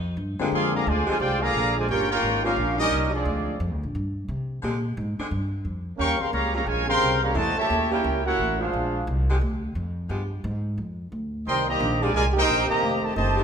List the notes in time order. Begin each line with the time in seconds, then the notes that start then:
Already playing: F2
0.17 G2
0.39 D3 G#3 A#3 C4 F4 G4, muted upright bass stroke
0.52 F2 F3 G#3 C4 G#4 D5 F5 C6
0.74 D3 F3 A#3 G#4 D5 F5 A#5
0.87 D2 D3 F3 G#3 F4 C5 D5 G#5
1.06 D3 F3 G#3 C4 F4 G4 C5 D5 G#5, muted upright bass stroke
1.19 C2 G#3 D4 F4 G4 C5 D5 G5
1.41 D3 F3 A#3 G#4 D5 F5 A#5
1.54 A#1
1.76 D3 F3 G#3 F4 C5 D5 G#5
1.88 G1 A#3 C#4 F4 G4 A#4 C#5 G5
2.11 A#3 C#4 F4 G4 A#4 C#5 G5
2.22 G#1
2.43 C#3 G3 A#3 C4 C#4 F4 G4 A#4 F5
2.56 A#1
2.78 G3 A#3 C#4 D#4 G4 A#4 D#5
2.90 C2
3.12 F3 G#3 C4 D4 F4 G#4 D5
3.25 D2
3.60 F2
3.71 D2
3.83 A#1
3.95 G2
4.28 C3
4.62 A#2 D3 G#3 C4 G4
4.97 G#2
5.19 D3 G#3 C4 D4, muted upright bass stroke
5.31 G2
5.65 F2
5.98 D#2 G3 A#3 C#4 A#4 F5 G5 C#6
6.19 C#3 G3 C4 A#4 F5 G5 C6, muted upright bass stroke
6.31 C#2 C#3 G3 A#3 G4 C#5 F5 A#5
6.53 C#3 G3 A#3 C4 F4 G4 C#5 F5 A#5
6.66 A#1 G#3 F4 A#4 C#5 G5 G#5
6.86 C#3 G3 C4 A#4 F5 G5 C6
7.01 C2
7.22 C#3 G3 A#3 G4 C#5 F5 A#5
7.34 E2 C#3 G3 A3 A#3 E4 F#4 C5 D#5 A5
7.56 A#2 C#3 A3 G4 C#5 E5 A5, muted upright bass stroke
7.70 D#2
7.90 C#3 G3 A#3 C#4 E4 G4 A#4 C#5 G5
8.04 C#2
8.25 A#3 C#4 E4 F#4 A#4 C#5 F#5
8.39 A1
8.59 G#3 D4 F4 G#4 C5 F5
8.73 A#1
9.07 C2
9.30 D3 G#3 C4 G4
9.41 D2
9.75 F2
10.08 G2 F3 G#3 B3 G4
10.44 G#2
10.78 F2
11.12 D2
11.47 C2 D#3 G3 C4 A#4 D#5 G5 C6
11.68 D#3 G3 A#3 G4 C5 D#5 A#5
11.80 A#1
12.01 D#3 G#3 A#3 C4 F4 G4 A#4 D5 G#5
12.13 C2 G#3 F4 A#4 D5 G#5
12.34 A#3 D#4 G4 C5
12.38 A#4 G5
12.48 A#1
12.66 C3 D#3 A#3 G4 C5 D#5 A#5
12.70 muted upright bass stroke
12.82 F1
13.01 C3 D#3 A3 G4 C5 D#5 A5
13.14 F#1 C3 D#3 A3 G4 C5 D#5 A5
13.37 D#3 A3 D4 G4